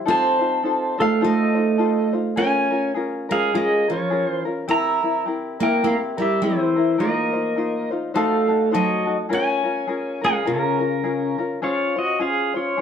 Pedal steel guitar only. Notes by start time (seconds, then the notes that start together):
0.10 C5 A5
1.00 A4 F5
1.24 A4 D#5
2.38 C#5 G#5
3.32 G#4 F5
3.56 G#4 D#5
3.91 F4 C#5
4.29 C5
4.71 E5 A#5
5.63 A#4 G5
5.87 A#4 F5
6.22 G4 E5
6.44 E4 C5
7.00 A#4 D#5
8.17 A4 F5
8.74 F#4 D#5
9.33 C#5 G#5
10.25 G#4 F5
10.48 C#4 A#4
11.64 F4 C#5
11.99 F#4 D#5
12.22 G#4 F5
12.56 F4 C#5